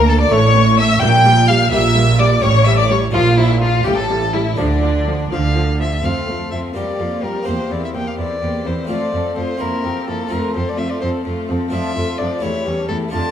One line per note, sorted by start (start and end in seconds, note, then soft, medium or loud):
0.00 0.28 D2 medium
0.00 0.30 D2 medium
0.00 0.30 D2 loud
0.00 0.26 A#3 medium
0.00 0.29 A#3 medium
0.00 0.26 D4 medium
0.00 0.27 G4 medium
0.07 0.20 A4 medium
0.07 0.14 A4 loud
0.07 0.19 A5 loud
0.19 0.32 D5 medium
0.19 0.34 D5 loud
0.19 0.31 D6 loud
0.27 0.98 A3 medium
0.27 0.39 A3 medium
0.27 0.99 E4 medium
0.27 0.77 C#6 loud
0.31 0.94 A1 loud
0.31 0.94 A2 loud
0.31 0.91 A2 medium
0.31 0.79 C#5 loud
0.55 0.63 A3 medium
0.78 0.87 A3 medium
0.78 1.02 E5 loud
0.78 1.01 E5 loud
0.78 1.02 E6 loud
0.99 1.64 A#1 loud
0.99 1.61 A#2 medium
0.99 1.64 A#2 loud
0.99 1.10 G3 medium
0.99 1.69 D4 medium
0.99 1.69 G4 medium
0.99 1.50 G5 loud
0.99 1.49 G5 loud
0.99 1.49 G6 loud
1.25 1.33 G3 medium
1.48 1.57 G3 medium
1.48 1.70 F5 loud
1.48 1.73 F5 loud
1.48 1.72 F6 loud
1.70 2.35 A#1 loud
1.70 2.35 A#2 loud
1.70 2.33 A#2 medium
1.70 1.80 G3 medium
1.70 2.40 D4 medium
1.70 2.41 G4 medium
1.70 2.21 E5 loud
1.70 2.19 E5 loud
1.70 2.19 E6 loud
1.95 2.03 G3 medium
2.19 2.27 G3 medium
2.19 2.43 D5 loud
2.19 2.27 D5 loud
2.19 2.44 D6 loud
2.39 3.06 A1 loud
2.39 3.03 A2 medium
2.39 2.50 G3 medium
2.39 3.10 C#4 medium
2.39 3.11 E4 medium
2.39 2.66 C#5 loud
2.39 2.67 C#6 loud
2.43 3.06 A2 loud
2.43 2.67 C#5 loud
2.64 2.74 G3 medium
2.64 2.77 E5 loud
2.64 2.79 E5 loud
2.64 2.78 E6 loud
2.77 2.87 D5 medium
2.77 2.90 D5 medium
2.77 2.90 D6 loud
2.88 2.98 G3 medium
2.88 3.01 C#5 medium
2.88 3.02 C#5 medium
2.88 2.95 C#6 loud
3.11 3.78 A#1 loud
3.11 3.77 A#2 medium
3.11 3.75 A#2 medium
3.11 3.22 F3 medium
3.11 3.82 D4 medium
3.11 3.40 F4 loud
3.11 3.23 F4 loud
3.15 3.37 F5 loud
3.38 3.46 F3 medium
3.38 3.61 E4 medium
3.38 3.62 E4 medium
3.38 3.62 E5 loud
3.61 3.70 F3 medium
3.61 3.85 F4 medium
3.61 3.86 F4 medium
3.61 3.86 F5 medium
3.83 4.50 A1 medium
3.83 4.50 A2 medium
3.83 4.47 A2 medium
3.83 3.94 G3 medium
3.83 4.55 C#4 medium
3.83 4.56 E4 medium
3.83 3.96 G4 loud
3.83 3.98 G4 medium
3.83 3.98 G5 loud
3.97 4.35 A4 medium
3.97 4.34 A4 medium
3.97 4.34 A5 loud
4.09 4.17 G3 medium
4.34 4.42 G3 medium
4.34 4.59 E4 medium
4.34 4.58 E5 medium
4.55 5.23 D2 medium
4.55 5.23 D3 medium
4.55 5.21 D3 medium
4.55 4.66 F3 medium
4.55 5.99 A3 medium
4.55 6.00 D4 medium
4.55 5.30 D4 medium
4.55 5.31 D4 medium
4.55 5.30 D5 medium
4.83 4.91 F3 medium
5.07 5.15 F3 medium
5.31 5.96 D2 medium
5.31 5.96 D3 medium
5.31 5.94 D3 medium
5.31 5.40 F3 medium
5.31 5.77 F5 medium
5.56 5.64 F3 medium
5.80 5.88 F3 medium
5.80 6.07 E5 medium
6.01 6.12 F2 soft
6.01 6.73 A3 soft
6.01 6.73 C4 soft
6.01 6.26 C4 soft
6.01 6.27 F4 soft
6.01 6.27 A4 soft
6.01 6.51 F5 medium
6.06 6.27 F2 soft
6.27 6.36 F2 soft
6.27 6.51 F2 soft
6.27 6.52 A3 soft
6.27 6.53 A4 soft
6.27 6.52 C5 soft
6.51 6.60 F2 soft
6.51 6.75 F2 soft
6.51 6.76 C4 soft
6.51 6.77 F4 soft
6.51 6.76 A4 soft
6.51 6.59 E5 medium
6.74 6.84 F2 soft
6.74 6.98 F2 soft
6.74 6.99 G3 soft
6.74 7.42 A#3 soft
6.74 7.45 G4 soft
6.74 6.98 G4 soft
6.74 6.98 D5 soft
6.74 7.25 D5 medium
7.00 7.08 F2 soft
7.00 7.21 F2 soft
7.00 7.24 A#3 soft
7.00 7.24 F4 soft
7.00 7.24 A#4 soft
7.23 7.32 F2 soft
7.23 7.46 F2 soft
7.23 7.48 G3 soft
7.23 7.48 G4 soft
7.23 7.47 A#4 medium
7.23 7.47 D5 soft
7.43 8.83 A#3 soft
7.43 8.84 C4 soft
7.43 8.85 G4 soft
7.43 7.73 C5 medium
7.47 7.69 E2 soft
7.47 7.56 E2 soft
7.47 7.70 A#3 soft
7.47 7.70 G4 soft
7.47 7.70 C5 soft
7.71 7.93 E2 soft
7.71 7.80 E2 soft
7.71 7.95 C4 soft
7.71 7.96 E4 soft
7.71 7.95 A#4 soft
7.71 7.83 D5 medium
7.84 7.89 E5 medium
7.95 8.16 E2 soft
7.95 8.03 E2 soft
7.95 8.19 A#3 soft
7.95 8.19 G4 soft
7.95 8.19 C5 soft
7.95 8.09 G5 medium
8.08 8.18 F5 medium
8.18 8.27 E2 soft
8.18 8.40 E2 soft
8.18 8.42 C4 soft
8.18 8.43 E4 soft
8.18 8.43 A#4 soft
8.18 8.68 D5 medium
8.42 8.50 E2 soft
8.42 8.64 E2 soft
8.42 8.64 A#3 soft
8.42 8.65 G4 soft
8.42 8.65 C5 soft
8.66 8.87 E2 soft
8.66 8.74 E2 soft
8.66 8.90 C4 soft
8.66 8.90 E4 soft
8.66 8.90 A#4 soft
8.66 8.90 C5 medium
8.85 9.57 A3 soft
8.85 9.56 C4 soft
8.85 9.58 F4 soft
8.89 9.11 F2 soft
8.89 8.98 F2 medium
8.89 9.12 A3 soft
8.89 9.12 F4 soft
8.89 9.12 C5 soft
8.89 9.37 D5 medium
9.12 9.35 F2 soft
9.12 9.21 F2 soft
9.12 9.37 C4 soft
9.12 9.38 A4 soft
9.36 9.58 F2 soft
9.36 9.45 F2 soft
9.36 9.61 A3 soft
9.36 9.61 F4 soft
9.36 9.61 C5 soft
9.36 9.62 C5 medium
9.57 9.82 F2 soft
9.57 9.69 F2 medium
9.57 9.83 A#3 soft
9.57 9.82 C4 soft
9.57 10.29 E4 soft
9.57 9.83 E4 soft
9.57 10.08 A#4 medium
9.62 9.84 A#4 soft
9.84 10.06 F2 soft
9.84 9.93 F2 medium
9.84 10.08 C4 soft
9.84 10.08 G4 soft
10.07 10.30 F2 soft
10.07 10.16 F2 soft
10.07 10.32 A#3 soft
10.07 10.31 E4 soft
10.07 10.33 A4 medium
10.07 10.32 A#4 soft
10.27 11.67 A3 soft
10.27 11.68 C4 soft
10.27 10.53 F4 soft
10.27 11.68 F4 soft
10.27 10.53 C5 soft
10.31 10.53 F2 soft
10.31 10.40 F2 medium
10.31 10.54 A3 soft
10.31 10.55 A#4 medium
10.54 10.76 F2 soft
10.54 10.64 F2 medium
10.54 10.79 C4 soft
10.54 10.79 A4 soft
10.54 10.70 C5 medium
10.69 10.80 D5 medium
10.78 10.99 F2 soft
10.78 10.87 F2 medium
10.78 11.03 A3 soft
10.78 11.02 F4 soft
10.78 11.03 C5 soft
10.78 10.92 E5 medium
10.90 11.01 D5 medium
11.01 11.23 F2 soft
11.01 11.11 F2 medium
11.01 11.26 C4 soft
11.01 11.26 A4 soft
11.01 11.09 C5 medium
11.25 11.47 F2 soft
11.25 11.34 F2 medium
11.25 11.48 A3 soft
11.25 11.48 F4 soft
11.25 11.48 C5 soft
11.49 11.71 F2 soft
11.49 11.58 F2 medium
11.49 11.73 C4 soft
11.49 11.73 A4 soft
11.68 12.38 A3 soft
11.68 12.40 D4 soft
11.68 12.40 F4 soft
11.68 12.20 E5 medium
11.72 11.94 F2 soft
11.72 11.81 F2 medium
11.72 11.95 F3 medium
11.72 11.95 D4 soft
11.72 11.95 F4 medium
11.97 12.05 F2 medium
11.97 12.18 F2 soft
11.97 12.21 A3 soft
11.97 12.20 F4 soft
11.97 12.20 A4 soft
12.18 12.41 F2 soft
12.18 12.28 F2 medium
12.18 12.44 F3 soft
12.18 12.44 D4 medium
12.18 12.44 F4 soft
12.18 12.43 D5 medium
12.39 13.07 A3 soft
12.39 13.10 E4 soft
12.39 13.11 G4 soft
12.39 12.88 C#5 medium
12.43 12.64 E2 soft
12.43 12.52 E2 medium
12.43 12.65 A3 medium
12.43 12.65 E4 soft
12.43 12.65 G4 soft
12.66 12.88 E2 soft
12.66 12.75 E2 medium
12.66 12.90 G3 soft
12.66 12.90 C#4 soft
12.66 12.90 A4 soft
12.88 13.11 E2 soft
12.88 12.98 E2 medium
12.88 13.14 A3 soft
12.88 13.13 E4 soft
12.88 13.13 G4 soft
12.88 12.96 A4 medium
13.09 13.31 A3 soft
13.09 13.31 D4 soft
13.09 13.31 F4 soft
13.13 13.31 F2 soft
13.13 13.22 F2 medium
13.13 13.31 D3 medium
13.13 13.31 D4 medium
13.13 13.31 F4 medium
13.13 13.31 A5 medium